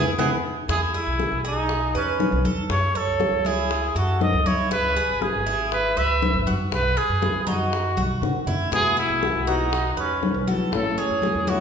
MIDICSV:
0, 0, Header, 1, 7, 480
1, 0, Start_track
1, 0, Key_signature, 4, "major"
1, 0, Tempo, 502092
1, 658, Time_signature, 4, 2, 24, 8
1, 11092, End_track
2, 0, Start_track
2, 0, Title_t, "Trumpet"
2, 0, Program_c, 0, 56
2, 185, Note_on_c, 0, 68, 85
2, 298, Note_off_c, 0, 68, 0
2, 673, Note_on_c, 0, 68, 102
2, 778, Note_off_c, 0, 68, 0
2, 920, Note_on_c, 0, 64, 91
2, 1357, Note_off_c, 0, 64, 0
2, 1404, Note_on_c, 0, 63, 91
2, 1840, Note_off_c, 0, 63, 0
2, 1882, Note_on_c, 0, 61, 74
2, 2319, Note_off_c, 0, 61, 0
2, 2592, Note_on_c, 0, 73, 92
2, 2833, Note_on_c, 0, 69, 84
2, 2847, Note_off_c, 0, 73, 0
2, 3317, Note_on_c, 0, 68, 94
2, 3331, Note_off_c, 0, 69, 0
2, 3789, Note_off_c, 0, 68, 0
2, 3798, Note_on_c, 0, 66, 79
2, 4014, Note_off_c, 0, 66, 0
2, 4037, Note_on_c, 0, 75, 96
2, 4276, Note_on_c, 0, 73, 94
2, 4290, Note_off_c, 0, 75, 0
2, 4506, Note_off_c, 0, 73, 0
2, 4512, Note_on_c, 0, 71, 103
2, 4993, Note_on_c, 0, 68, 94
2, 5007, Note_off_c, 0, 71, 0
2, 5468, Note_off_c, 0, 68, 0
2, 5474, Note_on_c, 0, 71, 100
2, 5716, Note_on_c, 0, 76, 99
2, 5731, Note_off_c, 0, 71, 0
2, 6189, Note_off_c, 0, 76, 0
2, 6431, Note_on_c, 0, 71, 102
2, 6667, Note_on_c, 0, 68, 101
2, 6681, Note_off_c, 0, 71, 0
2, 7144, Note_off_c, 0, 68, 0
2, 7149, Note_on_c, 0, 66, 90
2, 8065, Note_off_c, 0, 66, 0
2, 8357, Note_on_c, 0, 68, 117
2, 8572, Note_off_c, 0, 68, 0
2, 8594, Note_on_c, 0, 64, 97
2, 9063, Note_on_c, 0, 63, 93
2, 9077, Note_off_c, 0, 64, 0
2, 9539, Note_off_c, 0, 63, 0
2, 9546, Note_on_c, 0, 61, 80
2, 9987, Note_off_c, 0, 61, 0
2, 10267, Note_on_c, 0, 69, 92
2, 10508, Note_on_c, 0, 68, 92
2, 10523, Note_off_c, 0, 69, 0
2, 10990, Note_on_c, 0, 66, 94
2, 11004, Note_off_c, 0, 68, 0
2, 11092, Note_off_c, 0, 66, 0
2, 11092, End_track
3, 0, Start_track
3, 0, Title_t, "Cuban tres"
3, 0, Program_c, 1, 25
3, 177, Note_on_c, 1, 59, 87
3, 182, Note_on_c, 1, 64, 75
3, 185, Note_on_c, 1, 68, 67
3, 332, Note_off_c, 1, 59, 0
3, 332, Note_off_c, 1, 68, 0
3, 333, Note_off_c, 1, 64, 0
3, 659, Note_on_c, 1, 64, 77
3, 892, Note_off_c, 1, 64, 0
3, 901, Note_on_c, 1, 68, 69
3, 1366, Note_off_c, 1, 68, 0
3, 1382, Note_on_c, 1, 68, 79
3, 1847, Note_off_c, 1, 68, 0
3, 1863, Note_on_c, 1, 71, 72
3, 2328, Note_off_c, 1, 71, 0
3, 2342, Note_on_c, 1, 69, 65
3, 2807, Note_off_c, 1, 69, 0
3, 2822, Note_on_c, 1, 73, 64
3, 3287, Note_off_c, 1, 73, 0
3, 3307, Note_on_c, 1, 64, 77
3, 3770, Note_off_c, 1, 64, 0
3, 3784, Note_on_c, 1, 69, 73
3, 4249, Note_off_c, 1, 69, 0
3, 4263, Note_on_c, 1, 64, 73
3, 4491, Note_off_c, 1, 64, 0
3, 4502, Note_on_c, 1, 64, 77
3, 4735, Note_off_c, 1, 64, 0
3, 4745, Note_on_c, 1, 68, 74
3, 5209, Note_off_c, 1, 68, 0
3, 5224, Note_on_c, 1, 64, 79
3, 5689, Note_off_c, 1, 64, 0
3, 5706, Note_on_c, 1, 71, 73
3, 6170, Note_off_c, 1, 71, 0
3, 6184, Note_on_c, 1, 66, 63
3, 6648, Note_off_c, 1, 66, 0
3, 6662, Note_on_c, 1, 71, 70
3, 7127, Note_off_c, 1, 71, 0
3, 7138, Note_on_c, 1, 63, 81
3, 7605, Note_off_c, 1, 63, 0
3, 7623, Note_on_c, 1, 66, 71
3, 8087, Note_off_c, 1, 66, 0
3, 8098, Note_on_c, 1, 64, 73
3, 8324, Note_off_c, 1, 64, 0
3, 8336, Note_on_c, 1, 64, 74
3, 8570, Note_off_c, 1, 64, 0
3, 8573, Note_on_c, 1, 68, 69
3, 9041, Note_off_c, 1, 68, 0
3, 9056, Note_on_c, 1, 66, 74
3, 9521, Note_off_c, 1, 66, 0
3, 9532, Note_on_c, 1, 71, 76
3, 9999, Note_off_c, 1, 71, 0
3, 10014, Note_on_c, 1, 69, 70
3, 10479, Note_off_c, 1, 69, 0
3, 10494, Note_on_c, 1, 73, 72
3, 10958, Note_off_c, 1, 73, 0
3, 10971, Note_on_c, 1, 64, 74
3, 11092, Note_off_c, 1, 64, 0
3, 11092, End_track
4, 0, Start_track
4, 0, Title_t, "Nylon-string guitar"
4, 0, Program_c, 2, 24
4, 182, Note_on_c, 2, 56, 89
4, 182, Note_on_c, 2, 64, 82
4, 183, Note_on_c, 2, 59, 85
4, 332, Note_off_c, 2, 64, 0
4, 334, Note_off_c, 2, 56, 0
4, 334, Note_off_c, 2, 59, 0
4, 8331, Note_on_c, 2, 47, 67
4, 8338, Note_on_c, 2, 52, 67
4, 8345, Note_on_c, 2, 56, 75
4, 8348, Note_on_c, 2, 59, 76
4, 8351, Note_on_c, 2, 66, 73
4, 8800, Note_off_c, 2, 52, 0
4, 8805, Note_off_c, 2, 47, 0
4, 8811, Note_off_c, 2, 56, 0
4, 8812, Note_on_c, 2, 52, 47
4, 8813, Note_off_c, 2, 59, 0
4, 8815, Note_off_c, 2, 66, 0
4, 8822, Note_on_c, 2, 56, 50
4, 8827, Note_on_c, 2, 59, 57
4, 8833, Note_on_c, 2, 66, 53
4, 9045, Note_off_c, 2, 52, 0
4, 9048, Note_off_c, 2, 66, 0
4, 9050, Note_off_c, 2, 56, 0
4, 9052, Note_off_c, 2, 59, 0
4, 9059, Note_on_c, 2, 66, 69
4, 9066, Note_on_c, 2, 59, 61
4, 9072, Note_on_c, 2, 56, 62
4, 9077, Note_on_c, 2, 52, 49
4, 9288, Note_off_c, 2, 52, 0
4, 9288, Note_off_c, 2, 66, 0
4, 9289, Note_off_c, 2, 56, 0
4, 9292, Note_off_c, 2, 59, 0
4, 10015, Note_on_c, 2, 66, 65
4, 10024, Note_on_c, 2, 59, 59
4, 10031, Note_on_c, 2, 56, 58
4, 10035, Note_on_c, 2, 52, 53
4, 10245, Note_off_c, 2, 66, 0
4, 10246, Note_off_c, 2, 52, 0
4, 10250, Note_off_c, 2, 59, 0
4, 10253, Note_off_c, 2, 56, 0
4, 10258, Note_on_c, 2, 52, 70
4, 10263, Note_on_c, 2, 57, 81
4, 10270, Note_on_c, 2, 61, 68
4, 10275, Note_on_c, 2, 64, 79
4, 10718, Note_off_c, 2, 52, 0
4, 10728, Note_off_c, 2, 57, 0
4, 10729, Note_on_c, 2, 52, 55
4, 10731, Note_off_c, 2, 61, 0
4, 10734, Note_off_c, 2, 64, 0
4, 10738, Note_on_c, 2, 57, 54
4, 10743, Note_on_c, 2, 61, 56
4, 10751, Note_on_c, 2, 64, 58
4, 10959, Note_off_c, 2, 64, 0
4, 10961, Note_off_c, 2, 52, 0
4, 10965, Note_off_c, 2, 57, 0
4, 10968, Note_off_c, 2, 61, 0
4, 10970, Note_on_c, 2, 64, 68
4, 10980, Note_on_c, 2, 61, 57
4, 10989, Note_on_c, 2, 57, 61
4, 11092, Note_off_c, 2, 57, 0
4, 11092, Note_off_c, 2, 61, 0
4, 11092, Note_off_c, 2, 64, 0
4, 11092, End_track
5, 0, Start_track
5, 0, Title_t, "Upright bass"
5, 0, Program_c, 3, 32
5, 0, Note_on_c, 3, 40, 83
5, 115, Note_off_c, 3, 40, 0
5, 176, Note_on_c, 3, 40, 89
5, 356, Note_off_c, 3, 40, 0
5, 653, Note_on_c, 3, 40, 95
5, 884, Note_off_c, 3, 40, 0
5, 1018, Note_on_c, 3, 35, 73
5, 1247, Note_off_c, 3, 35, 0
5, 1261, Note_on_c, 3, 35, 87
5, 1831, Note_off_c, 3, 35, 0
5, 1860, Note_on_c, 3, 40, 87
5, 2202, Note_off_c, 3, 40, 0
5, 2219, Note_on_c, 3, 35, 93
5, 2334, Note_off_c, 3, 35, 0
5, 2340, Note_on_c, 3, 40, 85
5, 2569, Note_off_c, 3, 40, 0
5, 2576, Note_on_c, 3, 42, 101
5, 2807, Note_off_c, 3, 42, 0
5, 2940, Note_on_c, 3, 37, 70
5, 3169, Note_off_c, 3, 37, 0
5, 3174, Note_on_c, 3, 37, 79
5, 3748, Note_off_c, 3, 37, 0
5, 3777, Note_on_c, 3, 42, 89
5, 4121, Note_off_c, 3, 42, 0
5, 4141, Note_on_c, 3, 37, 92
5, 4253, Note_off_c, 3, 37, 0
5, 4259, Note_on_c, 3, 54, 80
5, 4489, Note_off_c, 3, 54, 0
5, 4504, Note_on_c, 3, 37, 104
5, 4731, Note_off_c, 3, 37, 0
5, 4865, Note_on_c, 3, 32, 70
5, 5092, Note_off_c, 3, 32, 0
5, 5109, Note_on_c, 3, 32, 82
5, 5676, Note_off_c, 3, 32, 0
5, 5702, Note_on_c, 3, 37, 91
5, 6044, Note_off_c, 3, 37, 0
5, 6057, Note_on_c, 3, 32, 88
5, 6173, Note_off_c, 3, 32, 0
5, 6179, Note_on_c, 3, 42, 80
5, 6408, Note_off_c, 3, 42, 0
5, 6421, Note_on_c, 3, 35, 98
5, 6649, Note_off_c, 3, 35, 0
5, 6779, Note_on_c, 3, 42, 72
5, 7008, Note_off_c, 3, 42, 0
5, 7016, Note_on_c, 3, 42, 78
5, 7588, Note_off_c, 3, 42, 0
5, 7618, Note_on_c, 3, 35, 88
5, 7847, Note_off_c, 3, 35, 0
5, 7853, Note_on_c, 3, 44, 76
5, 8072, Note_off_c, 3, 44, 0
5, 8091, Note_on_c, 3, 42, 69
5, 8310, Note_off_c, 3, 42, 0
5, 8331, Note_on_c, 3, 40, 99
5, 8563, Note_off_c, 3, 40, 0
5, 8690, Note_on_c, 3, 35, 78
5, 8922, Note_off_c, 3, 35, 0
5, 8930, Note_on_c, 3, 35, 81
5, 9502, Note_off_c, 3, 35, 0
5, 9531, Note_on_c, 3, 40, 85
5, 9875, Note_off_c, 3, 40, 0
5, 9888, Note_on_c, 3, 35, 93
5, 10003, Note_off_c, 3, 35, 0
5, 10009, Note_on_c, 3, 52, 75
5, 10239, Note_off_c, 3, 52, 0
5, 10249, Note_on_c, 3, 33, 101
5, 10479, Note_off_c, 3, 33, 0
5, 10605, Note_on_c, 3, 40, 72
5, 10837, Note_off_c, 3, 40, 0
5, 10846, Note_on_c, 3, 40, 80
5, 11092, Note_off_c, 3, 40, 0
5, 11092, End_track
6, 0, Start_track
6, 0, Title_t, "Muted nylon-string guitar strokes"
6, 9299, Note_on_c, 9, 29, 57
6, 9394, Note_off_c, 9, 29, 0
6, 11092, End_track
7, 0, Start_track
7, 0, Title_t, "Drums"
7, 175, Note_on_c, 9, 64, 95
7, 183, Note_on_c, 9, 61, 88
7, 271, Note_off_c, 9, 64, 0
7, 279, Note_off_c, 9, 61, 0
7, 658, Note_on_c, 9, 63, 34
7, 663, Note_on_c, 9, 60, 65
7, 754, Note_off_c, 9, 63, 0
7, 759, Note_off_c, 9, 60, 0
7, 897, Note_on_c, 9, 63, 32
7, 992, Note_off_c, 9, 63, 0
7, 1138, Note_on_c, 9, 63, 55
7, 1143, Note_on_c, 9, 60, 50
7, 1233, Note_off_c, 9, 63, 0
7, 1238, Note_off_c, 9, 60, 0
7, 1383, Note_on_c, 9, 60, 33
7, 1478, Note_off_c, 9, 60, 0
7, 1617, Note_on_c, 9, 63, 33
7, 1618, Note_on_c, 9, 60, 57
7, 1713, Note_off_c, 9, 60, 0
7, 1713, Note_off_c, 9, 63, 0
7, 1860, Note_on_c, 9, 60, 34
7, 1862, Note_on_c, 9, 63, 36
7, 1956, Note_off_c, 9, 60, 0
7, 1958, Note_off_c, 9, 63, 0
7, 2099, Note_on_c, 9, 63, 76
7, 2104, Note_on_c, 9, 60, 33
7, 2104, Note_on_c, 9, 61, 82
7, 2195, Note_off_c, 9, 63, 0
7, 2200, Note_off_c, 9, 60, 0
7, 2200, Note_off_c, 9, 61, 0
7, 2340, Note_on_c, 9, 63, 75
7, 2436, Note_off_c, 9, 63, 0
7, 2580, Note_on_c, 9, 60, 65
7, 2582, Note_on_c, 9, 63, 34
7, 2675, Note_off_c, 9, 60, 0
7, 2677, Note_off_c, 9, 63, 0
7, 2819, Note_on_c, 9, 63, 30
7, 2914, Note_off_c, 9, 63, 0
7, 3057, Note_on_c, 9, 63, 82
7, 3063, Note_on_c, 9, 60, 54
7, 3152, Note_off_c, 9, 63, 0
7, 3159, Note_off_c, 9, 60, 0
7, 3296, Note_on_c, 9, 63, 84
7, 3305, Note_on_c, 9, 60, 33
7, 3392, Note_off_c, 9, 63, 0
7, 3401, Note_off_c, 9, 60, 0
7, 3542, Note_on_c, 9, 63, 34
7, 3545, Note_on_c, 9, 60, 63
7, 3638, Note_off_c, 9, 63, 0
7, 3641, Note_off_c, 9, 60, 0
7, 3781, Note_on_c, 9, 63, 34
7, 3786, Note_on_c, 9, 60, 32
7, 3877, Note_off_c, 9, 63, 0
7, 3882, Note_off_c, 9, 60, 0
7, 4021, Note_on_c, 9, 63, 86
7, 4028, Note_on_c, 9, 60, 34
7, 4028, Note_on_c, 9, 61, 78
7, 4117, Note_off_c, 9, 63, 0
7, 4123, Note_off_c, 9, 60, 0
7, 4123, Note_off_c, 9, 61, 0
7, 4265, Note_on_c, 9, 63, 73
7, 4361, Note_off_c, 9, 63, 0
7, 4501, Note_on_c, 9, 63, 35
7, 4509, Note_on_c, 9, 60, 60
7, 4597, Note_off_c, 9, 63, 0
7, 4605, Note_off_c, 9, 60, 0
7, 4744, Note_on_c, 9, 63, 31
7, 4839, Note_off_c, 9, 63, 0
7, 4983, Note_on_c, 9, 63, 57
7, 4989, Note_on_c, 9, 60, 55
7, 5078, Note_off_c, 9, 63, 0
7, 5085, Note_off_c, 9, 60, 0
7, 5230, Note_on_c, 9, 60, 33
7, 5325, Note_off_c, 9, 60, 0
7, 5467, Note_on_c, 9, 63, 31
7, 5468, Note_on_c, 9, 60, 63
7, 5563, Note_off_c, 9, 63, 0
7, 5564, Note_off_c, 9, 60, 0
7, 5706, Note_on_c, 9, 63, 31
7, 5711, Note_on_c, 9, 60, 34
7, 5801, Note_off_c, 9, 63, 0
7, 5807, Note_off_c, 9, 60, 0
7, 5949, Note_on_c, 9, 63, 84
7, 5951, Note_on_c, 9, 60, 35
7, 5951, Note_on_c, 9, 61, 80
7, 6045, Note_off_c, 9, 63, 0
7, 6046, Note_off_c, 9, 60, 0
7, 6046, Note_off_c, 9, 61, 0
7, 6185, Note_on_c, 9, 63, 82
7, 6281, Note_off_c, 9, 63, 0
7, 6423, Note_on_c, 9, 63, 34
7, 6426, Note_on_c, 9, 60, 66
7, 6519, Note_off_c, 9, 63, 0
7, 6522, Note_off_c, 9, 60, 0
7, 6667, Note_on_c, 9, 63, 29
7, 6762, Note_off_c, 9, 63, 0
7, 6904, Note_on_c, 9, 63, 82
7, 6907, Note_on_c, 9, 60, 57
7, 6999, Note_off_c, 9, 63, 0
7, 7003, Note_off_c, 9, 60, 0
7, 7141, Note_on_c, 9, 63, 87
7, 7145, Note_on_c, 9, 60, 35
7, 7237, Note_off_c, 9, 63, 0
7, 7241, Note_off_c, 9, 60, 0
7, 7390, Note_on_c, 9, 60, 61
7, 7485, Note_off_c, 9, 60, 0
7, 7620, Note_on_c, 9, 63, 94
7, 7631, Note_on_c, 9, 60, 31
7, 7715, Note_off_c, 9, 63, 0
7, 7727, Note_off_c, 9, 60, 0
7, 7858, Note_on_c, 9, 64, 78
7, 7869, Note_on_c, 9, 60, 33
7, 7869, Note_on_c, 9, 61, 75
7, 7954, Note_off_c, 9, 64, 0
7, 7965, Note_off_c, 9, 60, 0
7, 7965, Note_off_c, 9, 61, 0
7, 8102, Note_on_c, 9, 64, 74
7, 8198, Note_off_c, 9, 64, 0
7, 8339, Note_on_c, 9, 63, 33
7, 8346, Note_on_c, 9, 60, 64
7, 8435, Note_off_c, 9, 63, 0
7, 8441, Note_off_c, 9, 60, 0
7, 8580, Note_on_c, 9, 63, 34
7, 8676, Note_off_c, 9, 63, 0
7, 8818, Note_on_c, 9, 63, 54
7, 8821, Note_on_c, 9, 60, 54
7, 8914, Note_off_c, 9, 63, 0
7, 8917, Note_off_c, 9, 60, 0
7, 9061, Note_on_c, 9, 60, 33
7, 9156, Note_off_c, 9, 60, 0
7, 9297, Note_on_c, 9, 63, 30
7, 9301, Note_on_c, 9, 60, 65
7, 9393, Note_off_c, 9, 63, 0
7, 9396, Note_off_c, 9, 60, 0
7, 9537, Note_on_c, 9, 63, 32
7, 9538, Note_on_c, 9, 60, 31
7, 9633, Note_off_c, 9, 63, 0
7, 9634, Note_off_c, 9, 60, 0
7, 9778, Note_on_c, 9, 60, 33
7, 9778, Note_on_c, 9, 61, 79
7, 9778, Note_on_c, 9, 63, 84
7, 9873, Note_off_c, 9, 60, 0
7, 9873, Note_off_c, 9, 61, 0
7, 9873, Note_off_c, 9, 63, 0
7, 10016, Note_on_c, 9, 63, 79
7, 10112, Note_off_c, 9, 63, 0
7, 10251, Note_on_c, 9, 63, 32
7, 10257, Note_on_c, 9, 60, 67
7, 10347, Note_off_c, 9, 63, 0
7, 10352, Note_off_c, 9, 60, 0
7, 10492, Note_on_c, 9, 63, 34
7, 10588, Note_off_c, 9, 63, 0
7, 10728, Note_on_c, 9, 63, 83
7, 10738, Note_on_c, 9, 60, 51
7, 10823, Note_off_c, 9, 63, 0
7, 10833, Note_off_c, 9, 60, 0
7, 10968, Note_on_c, 9, 63, 93
7, 10974, Note_on_c, 9, 60, 34
7, 11064, Note_off_c, 9, 63, 0
7, 11070, Note_off_c, 9, 60, 0
7, 11092, End_track
0, 0, End_of_file